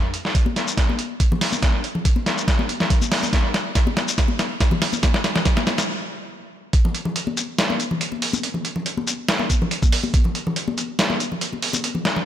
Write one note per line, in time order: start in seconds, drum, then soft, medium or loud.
0.14 closed hi-hat medium
0.25 snare soft
0.35 kick loud
0.35 closed hi-hat medium
0.46 high conga medium
0.56 snare soft
0.56 closed hi-hat medium
0.68 shaker medium
0.77 kick loud
0.77 snare medium
0.77 closed hi-hat medium
0.89 high conga medium
0.99 closed hi-hat medium
1.20 kick loud
1.20 closed hi-hat medium
1.32 high conga medium
1.32 low conga medium
1.41 snare medium
1.41 open hi-hat medium
1.52 high conga medium
1.52 shaker medium
1.63 kick loud
1.63 snare medium
1.63 closed hi-hat medium
1.84 closed hi-hat medium
1.95 low conga medium
2.05 kick loud
2.05 closed hi-hat medium
2.16 high conga medium
2.26 snare medium
2.26 closed hi-hat medium
2.38 shaker medium
2.48 kick loud
2.48 snare medium
2.48 closed hi-hat medium
2.59 high conga medium
2.69 closed hi-hat medium
2.80 snare medium
2.80 low conga medium
2.90 kick loud
2.90 closed hi-hat medium
3.02 high conga medium
3.02 shaker soft
3.12 snare medium
3.12 open hi-hat medium
3.23 high conga medium
3.23 shaker medium
3.33 kick loud
3.33 snare medium
3.33 closed hi-hat medium
3.54 snare medium
3.54 closed hi-hat medium
3.75 kick loud
3.75 snare medium
3.75 closed hi-hat medium
3.87 high conga loud
3.97 snare medium
3.97 closed hi-hat medium
4.08 shaker medium
4.18 kick loud
4.18 snare medium
4.18 closed hi-hat medium
4.28 high conga medium
4.39 snare medium
4.39 closed hi-hat medium
4.61 kick loud
4.61 snare medium
4.61 closed hi-hat medium
4.71 high conga medium
4.71 low conga loud
4.82 snare medium
4.82 open hi-hat medium
4.93 high conga medium
4.93 shaker medium
5.03 kick loud
5.03 snare loud
5.03 closed hi-hat medium
5.14 snare medium
5.24 snare loud
5.24 closed hi-hat medium
5.36 snare medium
5.36 closed hi-hat soft
5.36 low conga medium
5.45 kick loud
5.45 snare loud
5.45 closed hi-hat medium
5.57 snare medium
5.57 high conga loud
5.67 snare loud
5.67 closed hi-hat medium
5.78 snare medium
5.78 shaker medium
6.73 kick loud
6.73 closed hi-hat medium
6.85 muted conga soft
6.85 low conga medium
6.95 closed hi-hat medium
7.05 low conga medium
7.16 closed hi-hat medium
7.27 high conga medium
7.37 closed hi-hat medium
7.37 shaker medium
7.58 snare loud
7.58 closed hi-hat medium
7.70 high conga medium
7.80 closed hi-hat medium
7.80 shaker medium
7.91 low conga medium
8.01 closed hi-hat medium
8.12 muted conga soft
8.12 high conga medium
8.22 open hi-hat medium
8.33 muted conga medium
8.33 high conga medium
8.33 shaker medium
8.43 closed hi-hat medium
8.54 muted conga soft
8.54 low conga medium
8.65 closed hi-hat medium
8.76 low conga medium
8.86 closed hi-hat medium
8.97 high conga loud
9.07 closed hi-hat medium
9.07 shaker medium
9.28 snare loud
9.28 closed hi-hat medium
9.39 high conga medium
9.50 kick medium
9.50 closed hi-hat medium
9.50 shaker soft
9.62 low conga medium
9.71 closed hi-hat medium
9.83 kick loud
9.83 high conga medium
9.83 shaker medium
9.92 open hi-hat medium
10.04 high conga medium
10.14 kick loud
10.14 closed hi-hat medium
10.24 muted conga soft
10.24 low conga medium
10.35 closed hi-hat medium
10.47 low conga loud
10.56 closed hi-hat medium
10.68 high conga medium
10.78 closed hi-hat medium
10.78 shaker medium
10.99 snare loud
10.99 closed hi-hat medium
11.10 high conga medium
11.20 closed hi-hat medium
11.20 shaker soft
11.32 low conga medium
11.41 closed hi-hat medium
11.52 muted conga soft
11.52 high conga medium
11.62 open hi-hat medium
11.73 muted conga medium
11.73 high conga medium
11.73 shaker medium
11.84 closed hi-hat medium
11.95 muted conga soft
11.95 low conga medium
12.05 snare medium
12.05 closed hi-hat medium
12.16 low conga medium